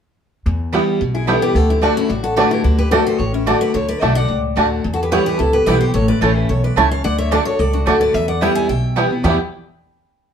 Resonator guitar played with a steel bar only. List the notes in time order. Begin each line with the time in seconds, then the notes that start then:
1.14 E4
1.27 E4
1.42 G4
1.55 F#4
1.70 E4
1.82 D4
1.96 C#4
2.09 D4
2.23 F#4
2.37 F#4
2.51 E4
2.64 D4
2.79 G4
2.91 A4
3.05 G4
3.19 A4
3.33 C#4
3.47 F#4
3.62 B4
3.75 A4
3.89 B4
4.02 A4
4.17 D5
4.94 F#4
5.02 G4
5.12 G4
5.26 G4
5.40 E4
5.53 G4
5.67 B4
5.82 G4
5.95 A4
6.09 B4
6.23 A4
6.36 G4
6.49 A4
6.64 B4
6.77 C#5
6.92 C#5
7.05 D5
7.19 C#5
7.32 A4
7.47 A4
7.59 A4
7.74 D4
7.87 F#4
8.00 B4
8.13 B4
8.29 D5
8.42 E5
8.56 E5
8.70 E5
9.24 E4